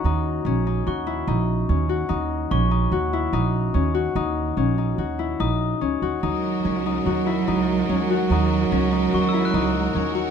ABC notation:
X:1
M:5/4
L:1/16
Q:1/4=145
K:Ebphr
V:1 name="Glockenspiel"
b4- b z3 d'12- | d' z3 d'12- d' z3 | z12 e'8- | e'2 z16 z2 |
z8 d' f' g'8- g'2 |]
V:2 name="String section"
z16 z4 | z16 z4 | z16 z4 | [A,GB]16- [A,GB]4- |
[A,GB]16- [A,GB]4 |]
V:3 name="Harp"
E4 D2 E2 G2 F2 E4 D2 G2 | E4 D2 E2 G2 F2 E4 D2 G2 | E4 D2 E2 G2 F2 E4 D2 G2 | E4 D2 E2 G2 F2 E4 D2 G2 |
E4 D2 E2 G2 F2 E4 D2 G2 |]
V:4 name="Cello" clef=bass
z16 z4 | z16 z4 | z16 z4 | G,16- G,4- |
G,16- G,4 |]
V:5 name="Upright bass" clef=bass
E,,4 B,,,4 E,,4 B,,,4 E,,4 | E,,4 B,,,4 E,,4 B,,,4 E,,4 | E,,4 B,,,4 E,,4 B,,,4 D,,2 E,,2 | E,,4 D,,4 E,,4 D,,4 E,,4 |
E,,4 D,,4 E,,4 D,,4 E,,4 |]